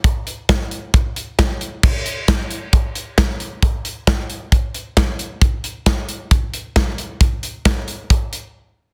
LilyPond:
\new DrumStaff \with { instrumentName = "Drums" } \drummode { \time 4/4 \tempo 4 = 134 <hh bd>8 hh8 <hh bd sn>8 hh8 <hh bd>8 hh8 <hh bd sn>8 hh8 | <cymc bd>8 hh8 <hh bd sn>8 hh8 <hh bd>8 hh8 <hh bd sn>8 hh8 | <hh bd>8 hh8 <hh bd sn>8 hh8 <hh bd>8 hh8 <hh bd sn>8 hh8 | <hh bd>8 hh8 <hh bd sn>8 hh8 <hh bd>8 hh8 <hh bd sn>8 hh8 |
<hh bd>8 hh8 <hh bd sn>8 hh8 <hh bd>8 hh8 r4 | }